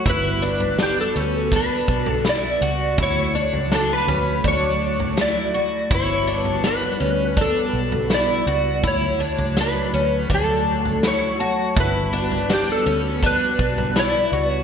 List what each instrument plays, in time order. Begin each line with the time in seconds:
Already playing: string machine F#4, glockenspiel C#6
0.06 fingered electric bass G1, string machine G3 B3 B4, twelve-string acoustic guitar E4, electric slide guitar B4, kick, floor tom
0.42 twelve-string acoustic guitar D4
0.60 floor tom
0.79 twelve-string acoustic guitar D4, electric slide guitar G4, snare
1.01 electric slide guitar A4
1.16 fingered electric bass D2, twelve-string acoustic guitar C#4
1.52 twelve-string acoustic guitar D4, kick, floor tom
1.56 electric slide guitar B4
1.88 fingered electric bass B1, kick
2.06 electric slide guitar A4, floor tom
2.25 twelve-string acoustic guitar E4, snare
2.29 electric slide guitar D5
2.61 fingered electric bass C#2, twelve-string acoustic guitar F#4
2.98 fingered electric bass D2, string machine F#3 A3, twelve-string acoustic guitar E4, kick, floor tom
3.03 electric slide guitar C#5
3.35 twelve-string acoustic guitar D4
3.53 fingered electric bass C#2, floor tom
3.72 twelve-string acoustic guitar D4, electric slide guitar A4, snare
3.93 electric slide guitar B4
4.07 fingered electric bass D2, twelve-string acoustic guitar C#4, floor tom
4.44 fingered electric bass D2, twelve-string acoustic guitar D4, electric slide guitar C#5, kick, floor tom
5.00 floor tom
5.17 twelve-string acoustic guitar E4, snare
5.21 electric slide guitar D5
5.54 twelve-string acoustic guitar F#4
5.91 fingered electric bass G1, string machine G3 B3 F#4 B4, twelve-string acoustic guitar E4, electric slide guitar C#5, kick, floor tom
6.27 twelve-string acoustic guitar D4
6.45 floor tom
6.64 twelve-string acoustic guitar D4, electric slide guitar B4, snare
7.00 fingered electric bass D2, twelve-string acoustic guitar C#4
7.37 twelve-string acoustic guitar D4, kick, floor tom
7.41 electric slide guitar A4
7.73 fingered electric bass B1
7.92 floor tom
8.10 twelve-string acoustic guitar E4, snare
8.14 electric slide guitar D5
8.46 fingered electric bass C#2, twelve-string acoustic guitar F#4
8.83 fingered electric bass D2, string machine F#3 A3 C#5, twelve-string acoustic guitar E4, kick, floor tom
8.88 electric slide guitar C#5
9.20 twelve-string acoustic guitar D4
9.38 fingered electric bass C#2, floor tom
9.57 twelve-string acoustic guitar D4, snare
9.61 electric slide guitar B4
9.93 fingered electric bass D2, twelve-string acoustic guitar C#4
10.30 fingered electric bass D2, twelve-string acoustic guitar D4, kick, floor tom
10.35 electric slide guitar A4
10.85 floor tom
11.03 twelve-string acoustic guitar E4, snare
11.07 electric slide guitar C#5
11.40 twelve-string acoustic guitar F#4, glockenspiel A5
11.76 fingered electric bass G1, string machine G3 B3 B4, twelve-string acoustic guitar E4, electric slide guitar B4, kick, floor tom
12.13 twelve-string acoustic guitar D4
12.32 floor tom
12.50 twelve-string acoustic guitar D4, electric slide guitar G4, snare
12.72 electric slide guitar A4
12.86 fingered electric bass D2, twelve-string acoustic guitar C#4
13.23 twelve-string acoustic guitar D4, electric slide guitar B4, kick, floor tom
13.59 fingered electric bass B1, kick
13.78 floor tom
13.96 twelve-string acoustic guitar E4, electric slide guitar D5, snare
14.32 fingered electric bass C#2, twelve-string acoustic guitar F#4
14.50 electric slide guitar C#5